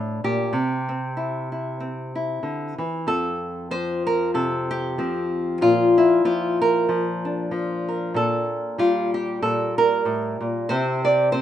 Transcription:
0, 0, Header, 1, 2, 480
1, 0, Start_track
1, 0, Key_signature, -1, "major"
1, 0, Tempo, 636267
1, 395, Time_signature, 4, 2, 24, 8
1, 8613, End_track
2, 0, Start_track
2, 0, Title_t, "Nylon-string guitar"
2, 0, Program_c, 0, 24
2, 0, Note_on_c, 0, 45, 56
2, 0, Note_on_c, 0, 53, 46
2, 0, Note_on_c, 0, 62, 46
2, 0, Note_on_c, 0, 69, 96
2, 178, Note_off_c, 0, 45, 0
2, 181, Note_off_c, 0, 69, 0
2, 181, Note_on_c, 0, 46, 59
2, 184, Note_on_c, 0, 67, 72
2, 372, Note_off_c, 0, 62, 0
2, 394, Note_off_c, 0, 46, 0
2, 394, Note_off_c, 0, 53, 0
2, 398, Note_on_c, 0, 48, 69
2, 669, Note_on_c, 0, 60, 47
2, 881, Note_on_c, 0, 64, 43
2, 1138, Note_off_c, 0, 64, 0
2, 1147, Note_on_c, 0, 64, 40
2, 1351, Note_off_c, 0, 60, 0
2, 1360, Note_on_c, 0, 60, 44
2, 1616, Note_off_c, 0, 64, 0
2, 1625, Note_on_c, 0, 64, 47
2, 1829, Note_off_c, 0, 48, 0
2, 1832, Note_on_c, 0, 50, 52
2, 2097, Note_off_c, 0, 50, 0
2, 2100, Note_on_c, 0, 52, 60
2, 2291, Note_off_c, 0, 64, 0
2, 2293, Note_off_c, 0, 60, 0
2, 2314, Note_off_c, 0, 52, 0
2, 2315, Note_on_c, 0, 41, 63
2, 2316, Note_off_c, 0, 67, 0
2, 2321, Note_on_c, 0, 69, 83
2, 2797, Note_on_c, 0, 53, 59
2, 2798, Note_off_c, 0, 69, 0
2, 2801, Note_on_c, 0, 72, 87
2, 3064, Note_off_c, 0, 72, 0
2, 3067, Note_on_c, 0, 70, 84
2, 3275, Note_on_c, 0, 48, 58
2, 3277, Note_off_c, 0, 70, 0
2, 3280, Note_on_c, 0, 69, 74
2, 3551, Note_on_c, 0, 67, 91
2, 3749, Note_off_c, 0, 53, 0
2, 3756, Note_off_c, 0, 48, 0
2, 3758, Note_on_c, 0, 53, 61
2, 3762, Note_on_c, 0, 60, 43
2, 4026, Note_off_c, 0, 69, 0
2, 4214, Note_off_c, 0, 60, 0
2, 4232, Note_off_c, 0, 41, 0
2, 4235, Note_on_c, 0, 46, 67
2, 4240, Note_off_c, 0, 67, 0
2, 4240, Note_on_c, 0, 65, 86
2, 4509, Note_on_c, 0, 64, 77
2, 4704, Note_off_c, 0, 53, 0
2, 4708, Note_off_c, 0, 65, 0
2, 4713, Note_on_c, 0, 53, 59
2, 4717, Note_on_c, 0, 65, 78
2, 4985, Note_off_c, 0, 65, 0
2, 4990, Note_on_c, 0, 70, 80
2, 5186, Note_off_c, 0, 53, 0
2, 5195, Note_on_c, 0, 53, 59
2, 5199, Note_off_c, 0, 64, 0
2, 5469, Note_on_c, 0, 62, 41
2, 5659, Note_off_c, 0, 53, 0
2, 5668, Note_on_c, 0, 53, 62
2, 5939, Note_off_c, 0, 70, 0
2, 5948, Note_on_c, 0, 70, 42
2, 6130, Note_off_c, 0, 46, 0
2, 6133, Note_off_c, 0, 70, 0
2, 6144, Note_on_c, 0, 46, 74
2, 6152, Note_off_c, 0, 53, 0
2, 6159, Note_on_c, 0, 69, 74
2, 6627, Note_on_c, 0, 55, 56
2, 6631, Note_off_c, 0, 69, 0
2, 6634, Note_on_c, 0, 65, 74
2, 6894, Note_off_c, 0, 65, 0
2, 6897, Note_on_c, 0, 67, 71
2, 7101, Note_off_c, 0, 46, 0
2, 7107, Note_off_c, 0, 67, 0
2, 7110, Note_on_c, 0, 46, 62
2, 7110, Note_on_c, 0, 69, 74
2, 7375, Note_off_c, 0, 69, 0
2, 7378, Note_on_c, 0, 70, 92
2, 7581, Note_off_c, 0, 46, 0
2, 7584, Note_on_c, 0, 45, 64
2, 7847, Note_off_c, 0, 45, 0
2, 7850, Note_on_c, 0, 46, 54
2, 8046, Note_off_c, 0, 55, 0
2, 8062, Note_off_c, 0, 70, 0
2, 8065, Note_on_c, 0, 72, 85
2, 8069, Note_off_c, 0, 46, 0
2, 8071, Note_on_c, 0, 48, 71
2, 8075, Note_on_c, 0, 60, 49
2, 8080, Note_off_c, 0, 62, 0
2, 8083, Note_on_c, 0, 64, 50
2, 8088, Note_on_c, 0, 67, 47
2, 8330, Note_off_c, 0, 72, 0
2, 8333, Note_on_c, 0, 74, 91
2, 8538, Note_off_c, 0, 74, 0
2, 8541, Note_on_c, 0, 72, 85
2, 8551, Note_off_c, 0, 60, 0
2, 8554, Note_on_c, 0, 60, 59
2, 8613, Note_off_c, 0, 48, 0
2, 8613, Note_off_c, 0, 60, 0
2, 8613, Note_off_c, 0, 64, 0
2, 8613, Note_off_c, 0, 67, 0
2, 8613, Note_off_c, 0, 72, 0
2, 8613, End_track
0, 0, End_of_file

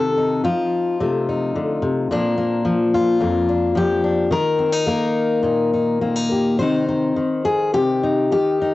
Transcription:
0, 0, Header, 1, 2, 480
1, 0, Start_track
1, 0, Tempo, 552995
1, 1830, Time_signature, 4, 2, 24, 8
1, 3748, Tempo, 571429
1, 7464, End_track
2, 0, Start_track
2, 0, Title_t, "Steel-string acoustic guitar"
2, 0, Program_c, 0, 25
2, 0, Note_on_c, 0, 48, 69
2, 0, Note_on_c, 0, 51, 54
2, 0, Note_on_c, 0, 69, 102
2, 153, Note_on_c, 0, 63, 45
2, 376, Note_off_c, 0, 51, 0
2, 379, Note_on_c, 0, 53, 57
2, 383, Note_off_c, 0, 69, 0
2, 385, Note_off_c, 0, 48, 0
2, 386, Note_on_c, 0, 65, 86
2, 871, Note_on_c, 0, 48, 61
2, 876, Note_on_c, 0, 57, 46
2, 1108, Note_off_c, 0, 63, 0
2, 1119, Note_on_c, 0, 63, 44
2, 1347, Note_off_c, 0, 48, 0
2, 1351, Note_on_c, 0, 50, 57
2, 1578, Note_off_c, 0, 50, 0
2, 1581, Note_on_c, 0, 48, 64
2, 1797, Note_off_c, 0, 53, 0
2, 1804, Note_off_c, 0, 57, 0
2, 1805, Note_off_c, 0, 63, 0
2, 1826, Note_off_c, 0, 48, 0
2, 1827, Note_off_c, 0, 65, 0
2, 1831, Note_on_c, 0, 46, 74
2, 1836, Note_on_c, 0, 53, 50
2, 1843, Note_on_c, 0, 62, 86
2, 1845, Note_on_c, 0, 58, 48
2, 2061, Note_off_c, 0, 58, 0
2, 2064, Note_on_c, 0, 58, 46
2, 2290, Note_off_c, 0, 53, 0
2, 2300, Note_on_c, 0, 53, 66
2, 2554, Note_on_c, 0, 65, 83
2, 2783, Note_on_c, 0, 41, 64
2, 2784, Note_off_c, 0, 46, 0
2, 2786, Note_off_c, 0, 58, 0
2, 2789, Note_on_c, 0, 58, 47
2, 3018, Note_off_c, 0, 62, 0
2, 3028, Note_on_c, 0, 62, 48
2, 3246, Note_off_c, 0, 53, 0
2, 3256, Note_on_c, 0, 53, 61
2, 3269, Note_off_c, 0, 65, 0
2, 3274, Note_on_c, 0, 67, 94
2, 3495, Note_off_c, 0, 62, 0
2, 3505, Note_on_c, 0, 62, 47
2, 3715, Note_off_c, 0, 53, 0
2, 3719, Note_off_c, 0, 62, 0
2, 3720, Note_off_c, 0, 58, 0
2, 3739, Note_on_c, 0, 51, 76
2, 3748, Note_off_c, 0, 41, 0
2, 3748, Note_off_c, 0, 67, 0
2, 3752, Note_on_c, 0, 70, 105
2, 3974, Note_on_c, 0, 60, 45
2, 4088, Note_off_c, 0, 60, 0
2, 4088, Note_on_c, 0, 63, 37
2, 4211, Note_on_c, 0, 58, 61
2, 4212, Note_off_c, 0, 70, 0
2, 4222, Note_on_c, 0, 70, 89
2, 4680, Note_on_c, 0, 46, 58
2, 4681, Note_off_c, 0, 63, 0
2, 4691, Note_on_c, 0, 63, 44
2, 4929, Note_off_c, 0, 63, 0
2, 4939, Note_on_c, 0, 63, 42
2, 5162, Note_off_c, 0, 58, 0
2, 5172, Note_on_c, 0, 58, 57
2, 5174, Note_off_c, 0, 63, 0
2, 5177, Note_on_c, 0, 60, 41
2, 5294, Note_off_c, 0, 60, 0
2, 5294, Note_on_c, 0, 63, 34
2, 5426, Note_off_c, 0, 70, 0
2, 5429, Note_on_c, 0, 67, 42
2, 5638, Note_off_c, 0, 58, 0
2, 5643, Note_off_c, 0, 67, 0
2, 5656, Note_on_c, 0, 72, 102
2, 5665, Note_off_c, 0, 46, 0
2, 5665, Note_off_c, 0, 63, 0
2, 5668, Note_off_c, 0, 51, 0
2, 5672, Note_on_c, 0, 48, 65
2, 5678, Note_on_c, 0, 51, 46
2, 5684, Note_on_c, 0, 63, 49
2, 5895, Note_off_c, 0, 63, 0
2, 5905, Note_on_c, 0, 63, 42
2, 6128, Note_off_c, 0, 51, 0
2, 6138, Note_on_c, 0, 51, 56
2, 6149, Note_off_c, 0, 48, 0
2, 6378, Note_on_c, 0, 68, 84
2, 6619, Note_off_c, 0, 68, 0
2, 6619, Note_on_c, 0, 48, 59
2, 6622, Note_on_c, 0, 67, 95
2, 6860, Note_off_c, 0, 63, 0
2, 6861, Note_off_c, 0, 72, 0
2, 6870, Note_on_c, 0, 63, 46
2, 7097, Note_off_c, 0, 51, 0
2, 7104, Note_off_c, 0, 48, 0
2, 7104, Note_off_c, 0, 67, 0
2, 7107, Note_on_c, 0, 51, 58
2, 7112, Note_on_c, 0, 67, 86
2, 7346, Note_off_c, 0, 63, 0
2, 7358, Note_on_c, 0, 63, 48
2, 7464, Note_off_c, 0, 51, 0
2, 7464, Note_off_c, 0, 63, 0
2, 7464, Note_off_c, 0, 67, 0
2, 7464, End_track
0, 0, End_of_file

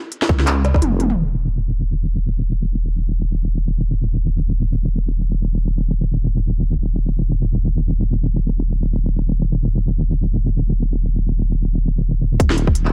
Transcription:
0, 0, Header, 1, 3, 480
1, 0, Start_track
1, 0, Tempo, 500000
1, 12412, End_track
2, 0, Start_track
2, 0, Title_t, "Wobble bass"
2, 0, Program_c, 0, 39
2, 281, Note_on_c, 0, 37, 95
2, 776, Note_off_c, 0, 37, 0
2, 786, Note_on_c, 0, 29, 98
2, 1113, Note_off_c, 0, 29, 0
2, 1122, Note_on_c, 0, 27, 89
2, 6499, Note_off_c, 0, 27, 0
2, 6515, Note_on_c, 0, 27, 86
2, 11890, Note_off_c, 0, 27, 0
2, 11903, Note_on_c, 0, 27, 101
2, 12397, Note_off_c, 0, 27, 0
2, 12412, End_track
3, 0, Start_track
3, 0, Title_t, "Drums"
3, 113, Note_on_c, 9, 42, 69
3, 209, Note_off_c, 9, 42, 0
3, 212, Note_on_c, 9, 39, 38
3, 212, Note_on_c, 9, 40, 93
3, 281, Note_on_c, 9, 36, 103
3, 308, Note_off_c, 9, 39, 0
3, 308, Note_off_c, 9, 40, 0
3, 377, Note_off_c, 9, 36, 0
3, 379, Note_on_c, 9, 40, 54
3, 451, Note_on_c, 9, 39, 117
3, 451, Note_on_c, 9, 42, 79
3, 475, Note_off_c, 9, 40, 0
3, 547, Note_off_c, 9, 39, 0
3, 547, Note_off_c, 9, 42, 0
3, 620, Note_on_c, 9, 38, 60
3, 620, Note_on_c, 9, 42, 36
3, 714, Note_on_c, 9, 36, 59
3, 716, Note_off_c, 9, 38, 0
3, 716, Note_off_c, 9, 42, 0
3, 716, Note_on_c, 9, 38, 59
3, 788, Note_on_c, 9, 42, 71
3, 788, Note_on_c, 9, 47, 85
3, 810, Note_off_c, 9, 36, 0
3, 812, Note_off_c, 9, 38, 0
3, 884, Note_off_c, 9, 42, 0
3, 884, Note_off_c, 9, 47, 0
3, 959, Note_on_c, 9, 42, 40
3, 959, Note_on_c, 9, 47, 76
3, 1055, Note_off_c, 9, 42, 0
3, 1055, Note_off_c, 9, 47, 0
3, 1055, Note_on_c, 9, 45, 86
3, 1151, Note_off_c, 9, 45, 0
3, 11902, Note_on_c, 9, 36, 122
3, 11904, Note_on_c, 9, 42, 82
3, 11998, Note_off_c, 9, 36, 0
3, 12000, Note_off_c, 9, 42, 0
3, 12002, Note_on_c, 9, 40, 83
3, 12074, Note_on_c, 9, 42, 41
3, 12098, Note_off_c, 9, 40, 0
3, 12167, Note_on_c, 9, 36, 62
3, 12170, Note_off_c, 9, 42, 0
3, 12242, Note_on_c, 9, 42, 74
3, 12263, Note_off_c, 9, 36, 0
3, 12338, Note_off_c, 9, 42, 0
3, 12340, Note_on_c, 9, 39, 40
3, 12412, Note_off_c, 9, 39, 0
3, 12412, End_track
0, 0, End_of_file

